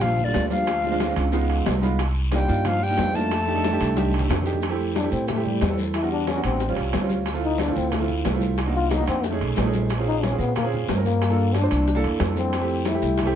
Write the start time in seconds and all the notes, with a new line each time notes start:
Already playing: A#1 G3 A#3 D4 F4
0.01 F3 F5, high bongo, high conga, low conga, high timbale, long guiro, maracas
0.18 high conga, low conga, maracas
0.24 D3 G3 A#3 D4 F4 D5
0.34 D2, high bongo, low bongo, high conga, high timbale, low timbale, short guiro, maracas
0.50 F3 G3 A#3 D4 F4 F5, high conga, short guiro, maracas
0.67 high bongo, high conga, high timbale, long guiro, maracas
0.83 G#3 C4 D4 F4, high bongo, high conga, maracas
0.91 G#3 C4 D4 F4
1.00 high bongo, high conga, high timbale, low timbale, short guiro, maracas
1.07 G#3 C4 D4 F4
1.16 C#2, high conga, high timbale, short guiro, maracas
1.32 G#3 B3 D#4 F4, high bongo, high conga, long guiro, maracas
1.49 F5, high bongo, high conga, high timbale, maracas
1.66 C2 D#5, high bongo, low bongo, high conga, high timbale, low timbale, short guiro, maracas
1.82 G#3 B3 D#4 F4 B5, high bongo, high conga, short guiro, maracas
1.99 high bongo, high conga, high timbale, long guiro, maracas
2.15 high conga, maracas
2.31 G3 A#3 D4 D#4 F4 G5, high bongo, high conga, high timbale, low timbale, short guiro, maracas
2.48 G2 A#3 D4 D#4 F4, high conga, short guiro, maracas
2.65 F3 F5, high bongo, high conga, low conga, high timbale, long guiro, maracas
2.81 G3 G5, high conga, maracas
2.89 A#3 D4 D#4 F4
2.97 F2, high bongo, low bongo, high conga, high timbale, low timbale, short guiro, maracas
3.14 A3 A#3 D4 D#4 F4 A5, high conga, short guiro, maracas
3.31 high bongo, high conga, high timbale, long guiro, maracas
3.46 A3 D4 D#4 G4, high bongo, high conga, maracas
3.54 A3 D4 D#4 A4
3.64 high bongo, high conga, high timbale, low timbale, short guiro, maracas
3.71 A3 D4 D#4 G4
3.80 C2, high conga, high timbale, short guiro, maracas
3.96 A3 D4 D#4 G4, high bongo, high conga, long guiro, maracas
4.08 high conga
4.13 high bongo, high timbale, maracas
4.19 low conga
4.29 F2, high bongo, low bongo, low conga, high timbale, low timbale, short guiro, maracas
4.41 A3, low conga
4.46 D4 D#4 G4, high bongo, short guiro, maracas
4.53 low conga
4.62 high bongo, high conga, high timbale, long guiro, maracas
4.69 A3 C4 E4 G4
4.79 high conga, maracas
4.95 D4, high bongo, high conga, high timbale, low timbale, short guiro, maracas
5.03 A3 C4 E4 G4
5.12 A2 C4, high conga, short guiro, maracas
5.28 A3, high bongo, high conga, low conga, high timbale, long guiro, maracas
5.36 A3 C4 E4 G4
5.45 G3, high conga, low conga, maracas
5.61 E2, high bongo, low bongo, high conga, high timbale, low timbale, short guiro, maracas
5.69 A3 C4 E4 A4
5.77 high conga, short guiro, maracas
5.94 E4, high bongo, high conga, high timbale, long guiro, maracas
6.02 G3 B3 D4 F#4
6.10 D4, high bongo, high conga, maracas
6.27 C#4, high bongo, high conga, high timbale, low timbale, short guiro, maracas
6.35 G3 B3 D4 F#4
6.43 A1 C4, high conga, high timbale, short guiro, maracas
6.60 high bongo, high conga, long guiro, maracas
6.68 G3 C4 C#4 F4
6.76 C2, high bongo, high conga, high timbale, maracas
6.93 D2, high bongo, low bongo, high conga, high timbale, low timbale, short guiro, maracas
7.00 G3 C4 C#4 F4
7.09 high bongo, high conga, short guiro, maracas
7.26 high bongo, high conga, high timbale, long guiro, maracas
7.34 A3 C4 E4 F4
7.43 D#4, high conga, maracas
7.58 D4, high bongo, high conga, high timbale, low timbale, short guiro, maracas
7.67 A3 C4 E4 F4
7.75 D2 C4, high conga, short guiro, maracas
7.92 A3, high bongo, high conga, low conga, high timbale, long guiro, maracas
8.00 A3 C4 E4 F4
8.09 high conga, low conga, maracas
8.24 C2, high bongo, low bongo, high conga, high timbale, low timbale, short guiro, maracas
8.33 A3 C4 E4 F4
8.40 high conga, short guiro, maracas
8.58 high bongo, high conga, high timbale, long guiro, maracas
8.66 A#3 D4 D#4 F#4
8.74 F4, high bongo, high conga, maracas
8.90 D#4, high bongo, high conga, high timbale, low timbale, short guiro, maracas
8.98 A#3 D4 D#4 F#4
9.06 F2 C4, high conga, high timbale, short guiro, maracas
9.23 A3, high bongo, high conga, long guiro, maracas
9.31 A3 C#4 D#4 G#4
9.40 B1, high bongo, high conga, high timbale, maracas
9.56 A#1, high bongo, low bongo, high conga, high timbale, low timbale, short guiro, maracas
9.64 A3 C#4 D#4 G#4
9.73 high bongo, high conga, short guiro, maracas
9.90 high bongo, high timbale, long guiro, maracas
9.97 C4 C#4 F4 G#4
10.07 D#4, high conga, maracas
10.23 C#4, high bongo, high conga, high timbale, low timbale, short guiro, maracas
10.30 C4 C#4 F4 G#4
10.38 A#2 B3, short guiro, maracas
10.56 A#3, high bongo, high conga, low conga, high timbale, long guiro, maracas
10.63 C4 C#4 F4 G#4
10.72 high conga, low conga, maracas
10.88 G2, high bongo, low bongo, high conga, high timbale, low timbale, short guiro, maracas
10.96 C4 C#4 F4 A#4
11.05 A#3, high conga, short guiro, maracas
11.22 high bongo, high conga, high timbale, long guiro, maracas
11.29 A#3 D4 F4 A4
11.38 high bongo, high conga, maracas
11.54 D4, high bongo, high conga, high timbale, low timbale, short guiro, maracas
11.61 A#3 D4 F4 C5
11.71 C2, high conga, high timbale, short guiro, maracas
11.87 high bongo, high conga, long guiro, maracas
11.95 A#3 D4 E4 A4
12.03 E2, high bongo, high conga, high timbale, maracas
12.20 F2, high bongo, low bongo, high conga, high timbale, low timbale, short guiro, maracas
12.28 A#3 D4 E4 A4
12.36 C4, high bongo, high conga, short guiro, maracas
12.52 high bongo, high conga, high timbale, long guiro, maracas
12.61 A3 C4 E4 G4
12.69 high conga, maracas
12.85 E4, high bongo, high conga, high timbale, low timbale, short guiro, maracas
12.93 A3 C4 E4 G4
13.02 C2, high conga, short guiro, maracas
13.18 high bongo, high conga, low conga, high timbale, long guiro, maracas
13.25 A3 C4 E4 G4